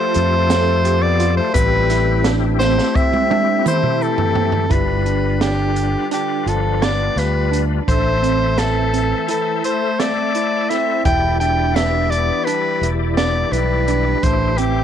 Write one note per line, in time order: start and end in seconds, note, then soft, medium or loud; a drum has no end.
0.00 1.51 F3 medium
0.00 1.03 A3 medium
0.00 0.42 F4 medium
0.00 1.51 F4 medium
0.00 1.51 G4 medium
0.00 1.51 A4 medium
0.00 1.04 C5 loud
0.14 1.39 F2 medium
0.14 closed hi-hat medium
0.50 0.81 A4 medium
0.50 snare loud
0.50 closed hi-hat medium
0.50 shaker medium
0.85 1.16 G4 medium
0.85 closed hi-hat medium
0.85 shaker soft
1.01 1.35 B3 medium
1.01 1.37 D5 medium
1.20 1.82 F4 medium
1.20 closed hi-hat medium
1.36 1.53 A3 medium
1.36 1.53 C5 medium
1.53 2.79 A1 medium
1.53 2.30 G3 medium
1.53 4.66 A3 medium
1.53 4.66 C4 medium
1.53 4.66 E4 medium
1.53 4.66 G4 medium
1.53 2.29 B4 loud
1.53 kick loud
1.53 closed hi-hat medium
1.53 shaker medium
1.90 2.21 E4 medium
1.90 snare soft
1.90 closed hi-hat soft
2.24 2.56 D4 medium
2.24 snare loud
2.24 closed hi-hat medium
2.60 2.97 A3 medium
2.60 3.22 C4 medium
2.60 2.97 C5 medium
2.60 snare medium
2.60 shaker soft
2.78 snare medium
2.96 3.66 C4 medium
2.96 3.66 E5 medium
2.96 kick loud
2.96 shaker soft
3.13 high tom medium
3.30 3.61 D4 medium
3.30 high tom medium
3.64 4.27 E4 medium
3.64 4.04 C5 medium
3.64 mid tom medium
3.64 shaker medium
3.69 4.06 A3 medium
3.83 mid tom medium
4.02 4.73 E3 medium
4.02 4.73 A4 medium
4.02 shaker soft
4.18 floor tom medium
4.35 4.66 C4 medium
4.35 floor tom medium
4.52 floor tom medium
4.70 5.95 G1 medium
4.70 7.84 G3 medium
4.70 5.41 G3 medium
4.70 7.84 D4 soft
4.70 5.01 E4 medium
4.70 7.83 F4 soft
4.70 7.83 B4 medium
4.70 5.41 B4 medium
4.70 kick medium
4.70 closed hi-hat medium
5.06 5.37 D4 medium
5.06 closed hi-hat soft
5.41 6.09 D3 medium
5.41 6.03 D4 medium
5.41 6.08 G4 medium
5.41 snare loud
5.41 closed hi-hat medium
5.76 closed hi-hat soft
6.11 6.50 D3 medium
6.11 6.43 D4 medium
6.11 6.50 G4 medium
6.11 closed hi-hat medium
6.46 7.09 G1 medium
6.46 6.87 F3 medium
6.46 6.77 F4 medium
6.46 6.85 A4 medium
6.46 closed hi-hat medium
6.82 7.22 B3 medium
6.82 7.13 D4 medium
6.82 7.20 D5 medium
6.82 snare medium
6.82 closed hi-hat medium
7.16 7.79 D2 medium
7.16 7.48 F4 medium
7.16 7.61 B4 medium
7.16 snare soft
7.16 closed hi-hat medium
7.20 7.62 G3 medium
7.51 8.14 D4 medium
7.51 closed hi-hat medium
7.88 9.12 A1 medium
7.88 11.01 A3 medium
7.88 8.61 A3 medium
7.88 11.01 A4 medium
7.88 8.60 C5 medium
7.88 11.02 C5 soft
7.88 11.01 E5 medium
7.88 kick medium
7.88 closed hi-hat medium
8.22 8.85 C4 medium
8.22 closed hi-hat soft
8.58 9.30 E3 medium
8.58 9.29 A4 medium
8.58 snare medium
8.58 closed hi-hat medium
8.93 9.24 C4 medium
8.93 closed hi-hat medium
9.28 9.63 E3 medium
9.28 9.91 E4 medium
9.28 9.62 A4 medium
9.28 closed hi-hat medium
9.64 10.00 A3 medium
9.64 10.01 C5 medium
9.64 closed hi-hat medium
9.99 10.72 A3 medium
9.99 10.30 C4 medium
9.99 10.71 D5 medium
9.99 snare loud
9.99 closed hi-hat medium
10.35 10.66 E4 medium
10.35 closed hi-hat medium
10.70 11.06 C4 medium
10.70 11.01 E4 medium
10.70 11.05 E5 medium
10.70 snare soft
10.70 closed hi-hat medium
11.04 12.30 E1 medium
11.04 14.18 E3 medium
11.04 14.18 E4 medium
11.04 11.36 E4 medium
11.04 11.39 E4 medium
11.04 14.18 G4 medium
11.04 14.18 D5 medium
11.04 11.38 G5 loud
11.04 kick medium
11.04 closed hi-hat medium
11.40 11.71 D4 medium
11.40 11.80 E4 medium
11.40 11.77 G5 medium
11.40 closed hi-hat soft
11.75 12.14 B3 medium
11.75 12.38 D4 medium
11.75 12.12 E5 loud
11.75 snare medium
11.75 closed hi-hat medium
12.10 12.50 B3 medium
12.10 12.46 D5 medium
12.10 closed hi-hat medium
12.45 12.91 G3 medium
12.45 12.78 D4 medium
12.45 12.89 B4 medium
12.45 closed hi-hat medium
12.81 13.44 E1 medium
12.81 13.13 E4 medium
12.81 closed hi-hat medium
13.16 13.55 B3 medium
13.16 13.49 D4 medium
13.16 13.53 D5 medium
13.16 snare loud
13.16 closed hi-hat medium
13.52 14.14 B1 medium
13.52 14.24 G3 medium
13.52 13.84 E4 medium
13.52 14.24 B4 medium
13.52 closed hi-hat medium
13.88 14.50 D4 medium
13.88 closed hi-hat medium
14.23 14.84 A1 medium
14.23 14.60 A3 medium
14.23 14.84 A3 medium
14.23 14.84 E4 medium
14.23 14.84 G4 medium
14.23 14.59 C5 medium
14.23 14.84 C5 medium
14.23 kick medium
14.23 closed hi-hat medium
14.58 14.84 E3 medium
14.58 14.84 C4 medium
14.58 14.84 G4 medium
14.58 closed hi-hat medium